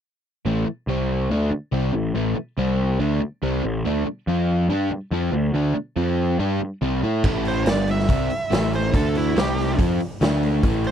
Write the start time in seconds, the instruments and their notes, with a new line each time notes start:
0.45 picked electric bass A1, overdriven electric guitar A2 E3 A3
0.67 muted picked electric bass stroke, muted overdriven electric guitar stroke
0.87 picked electric bass C2, overdriven electric guitar C3 G3 C4
1.30 picked electric bass D2, overdriven electric guitar D3 A3 D4
1.51 muted picked electric bass stroke, muted overdriven electric guitar stroke
1.72 picked electric bass C2, overdriven electric guitar C3 G3 C4
1.93 picked electric bass A1, overdriven electric guitar A2 E3
2.14 picked electric bass A1, overdriven electric guitar A2 E3 A3
2.36 muted picked electric bass stroke, muted overdriven electric guitar stroke
2.58 picked electric bass C2, overdriven electric guitar C3 G3 C4
2.99 picked electric bass D2, overdriven electric guitar D3 A3 D4
3.21 muted picked electric bass stroke, muted overdriven electric guitar stroke
3.43 picked electric bass C2, overdriven electric guitar C3 G3 C4
3.64 picked electric bass A1, overdriven electric guitar A2 E3
3.85 picked electric bass D2, overdriven electric guitar D3 A3 D4
4.06 muted picked electric bass stroke, muted overdriven electric guitar stroke
4.27 picked electric bass F2, overdriven electric guitar F3 C4 F4
4.69 picked electric bass G2, overdriven electric guitar G3 D4 G4
4.90 muted picked electric bass stroke, muted overdriven electric guitar stroke
5.11 picked electric bass F2, overdriven electric guitar F3 C4 F4
5.32 picked electric bass D2, overdriven electric guitar D3 A3
5.53 picked electric bass D2, overdriven electric guitar D3 A3 D4
5.75 muted picked electric bass stroke, muted overdriven electric guitar stroke
5.96 picked electric bass F2, overdriven electric guitar F3 C4 F4
6.39 picked electric bass G2, overdriven electric guitar G3 D4 G4
6.60 muted overdriven electric guitar stroke, muted picked electric bass stroke
6.82 picked electric bass C2, overdriven electric guitar C3 G3 C4
7.02 picked electric bass A2, overdriven electric guitar A3 E4 A4
7.24 picked electric bass A1, overdriven electric guitar A2 E3 A3, kick, crash
7.45 lead electric guitar C5, open hi-hat
7.65 picked electric bass G1, overdriven electric guitar G2 D3 G3, lead electric guitar D5, snare, open hi-hat
7.87 lead electric guitar E5, open hi-hat
7.99 snare
8.09 picked electric bass C2, overdriven electric guitar C3 G3 C4, kick, open hi-hat
8.30 open hi-hat
8.50 picked electric bass A1, overdriven electric guitar A2 E3 A3, snare, open hi-hat
8.73 lead electric guitar C5, open hi-hat
8.93 picked electric bass D2, overdriven electric guitar D3 A3 D4, lead electric guitar A4, kick, open hi-hat
9.15 lead electric guitar E4, open hi-hat
9.36 picked electric bass C2, overdriven electric guitar C3 G3 C4, lead electric guitar G4, snare, open hi-hat
9.58 snare, open hi-hat
9.79 picked electric bass F2, overdriven electric guitar F3 C4 F4, kick, open hi-hat
10.00 open hi-hat
10.21 picked electric bass D2, overdriven electric guitar D3 A3 D4, snare, open hi-hat
10.43 open hi-hat
10.63 picked electric bass A1, overdriven electric guitar A2 E3 A3, kick, open hi-hat
10.84 lead electric guitar C5, open hi-hat